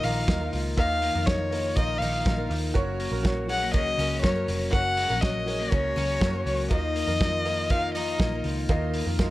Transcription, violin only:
0, 0, Header, 1, 2, 480
1, 0, Start_track
1, 0, Key_signature, -6, "minor"
1, 0, Tempo, 495050
1, 747, Time_signature, 4, 2, 24, 8
1, 9019, End_track
2, 0, Start_track
2, 0, Title_t, "Violin"
2, 0, Program_c, 0, 40
2, 34, Note_on_c, 0, 77, 90
2, 511, Note_off_c, 0, 77, 0
2, 758, Note_on_c, 0, 77, 115
2, 1222, Note_on_c, 0, 73, 97
2, 1236, Note_off_c, 0, 77, 0
2, 1705, Note_on_c, 0, 75, 109
2, 1719, Note_off_c, 0, 73, 0
2, 1926, Note_on_c, 0, 77, 93
2, 1940, Note_off_c, 0, 75, 0
2, 2417, Note_off_c, 0, 77, 0
2, 3398, Note_on_c, 0, 78, 100
2, 3616, Note_off_c, 0, 78, 0
2, 3630, Note_on_c, 0, 75, 114
2, 4075, Note_off_c, 0, 75, 0
2, 4095, Note_on_c, 0, 73, 90
2, 4436, Note_off_c, 0, 73, 0
2, 4572, Note_on_c, 0, 78, 108
2, 5053, Note_on_c, 0, 75, 92
2, 5068, Note_off_c, 0, 78, 0
2, 5536, Note_on_c, 0, 73, 104
2, 5551, Note_off_c, 0, 75, 0
2, 6255, Note_off_c, 0, 73, 0
2, 6261, Note_on_c, 0, 73, 74
2, 6488, Note_off_c, 0, 73, 0
2, 6509, Note_on_c, 0, 75, 110
2, 7471, Note_on_c, 0, 77, 106
2, 7486, Note_off_c, 0, 75, 0
2, 7700, Note_off_c, 0, 77, 0
2, 7706, Note_on_c, 0, 75, 81
2, 8154, Note_off_c, 0, 75, 0
2, 9019, End_track
0, 0, End_of_file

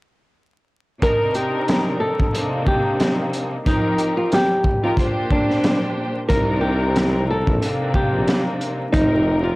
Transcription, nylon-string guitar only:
0, 0, Header, 1, 2, 480
1, 0, Start_track
1, 0, Tempo, 659341
1, 745, Time_signature, 4, 2, 24, 8
1, 6957, End_track
2, 0, Start_track
2, 0, Title_t, "Nylon-string guitar"
2, 0, Program_c, 0, 24
2, 749, Note_on_c, 0, 70, 101
2, 963, Note_off_c, 0, 70, 0
2, 982, Note_on_c, 0, 67, 71
2, 1435, Note_off_c, 0, 67, 0
2, 1456, Note_on_c, 0, 69, 75
2, 1911, Note_off_c, 0, 69, 0
2, 1948, Note_on_c, 0, 67, 81
2, 2296, Note_off_c, 0, 67, 0
2, 2669, Note_on_c, 0, 63, 105
2, 3017, Note_off_c, 0, 63, 0
2, 3037, Note_on_c, 0, 65, 76
2, 3134, Note_off_c, 0, 65, 0
2, 3160, Note_on_c, 0, 67, 74
2, 3503, Note_off_c, 0, 67, 0
2, 3519, Note_on_c, 0, 65, 75
2, 3845, Note_off_c, 0, 65, 0
2, 3868, Note_on_c, 0, 62, 70
2, 4216, Note_off_c, 0, 62, 0
2, 4576, Note_on_c, 0, 70, 105
2, 4796, Note_off_c, 0, 70, 0
2, 4810, Note_on_c, 0, 67, 72
2, 5269, Note_off_c, 0, 67, 0
2, 5317, Note_on_c, 0, 69, 79
2, 5763, Note_off_c, 0, 69, 0
2, 5788, Note_on_c, 0, 67, 84
2, 6136, Note_off_c, 0, 67, 0
2, 6496, Note_on_c, 0, 63, 103
2, 6850, Note_off_c, 0, 63, 0
2, 6869, Note_on_c, 0, 65, 72
2, 6957, Note_off_c, 0, 65, 0
2, 6957, End_track
0, 0, End_of_file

